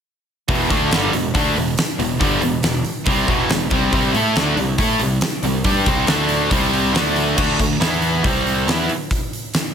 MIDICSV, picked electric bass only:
0, 0, Header, 1, 2, 480
1, 0, Start_track
1, 0, Key_signature, 1, "minor"
1, 0, Tempo, 431344
1, 537, Time_signature, 4, 2, 24, 8
1, 10842, End_track
2, 0, Start_track
2, 0, Title_t, "Picked electric bass"
2, 0, Program_c, 0, 34
2, 542, Note_on_c, 0, 28, 103
2, 762, Note_off_c, 0, 28, 0
2, 781, Note_on_c, 0, 38, 92
2, 1001, Note_off_c, 0, 38, 0
2, 1018, Note_on_c, 0, 31, 95
2, 1240, Note_off_c, 0, 31, 0
2, 1255, Note_on_c, 0, 28, 84
2, 1477, Note_off_c, 0, 28, 0
2, 1499, Note_on_c, 0, 38, 91
2, 1719, Note_off_c, 0, 38, 0
2, 1731, Note_on_c, 0, 28, 83
2, 1955, Note_off_c, 0, 28, 0
2, 2210, Note_on_c, 0, 28, 80
2, 2434, Note_off_c, 0, 28, 0
2, 2459, Note_on_c, 0, 31, 96
2, 2678, Note_off_c, 0, 31, 0
2, 2688, Note_on_c, 0, 28, 73
2, 2912, Note_off_c, 0, 28, 0
2, 2929, Note_on_c, 0, 28, 76
2, 3153, Note_off_c, 0, 28, 0
2, 3410, Note_on_c, 0, 36, 93
2, 3632, Note_off_c, 0, 36, 0
2, 3651, Note_on_c, 0, 28, 85
2, 3873, Note_off_c, 0, 28, 0
2, 3890, Note_on_c, 0, 28, 81
2, 4112, Note_off_c, 0, 28, 0
2, 4128, Note_on_c, 0, 36, 84
2, 4351, Note_off_c, 0, 36, 0
2, 4373, Note_on_c, 0, 36, 98
2, 4593, Note_off_c, 0, 36, 0
2, 4607, Note_on_c, 0, 45, 87
2, 4830, Note_off_c, 0, 45, 0
2, 4851, Note_on_c, 0, 38, 91
2, 5072, Note_off_c, 0, 38, 0
2, 5084, Note_on_c, 0, 36, 80
2, 5308, Note_off_c, 0, 36, 0
2, 5325, Note_on_c, 0, 45, 92
2, 5549, Note_off_c, 0, 45, 0
2, 5563, Note_on_c, 0, 36, 80
2, 5788, Note_off_c, 0, 36, 0
2, 6041, Note_on_c, 0, 36, 75
2, 6266, Note_off_c, 0, 36, 0
2, 6285, Note_on_c, 0, 43, 91
2, 6508, Note_off_c, 0, 43, 0
2, 6525, Note_on_c, 0, 36, 93
2, 6748, Note_off_c, 0, 36, 0
2, 6758, Note_on_c, 0, 38, 86
2, 7208, Note_off_c, 0, 38, 0
2, 7245, Note_on_c, 0, 36, 97
2, 7692, Note_off_c, 0, 36, 0
2, 7721, Note_on_c, 0, 38, 86
2, 8170, Note_off_c, 0, 38, 0
2, 8212, Note_on_c, 0, 38, 95
2, 8433, Note_off_c, 0, 38, 0
2, 8451, Note_on_c, 0, 38, 71
2, 8673, Note_off_c, 0, 38, 0
2, 8680, Note_on_c, 0, 40, 93
2, 9132, Note_off_c, 0, 40, 0
2, 9173, Note_on_c, 0, 36, 88
2, 9620, Note_off_c, 0, 36, 0
2, 9648, Note_on_c, 0, 40, 90
2, 9874, Note_off_c, 0, 40, 0
2, 10842, End_track
0, 0, End_of_file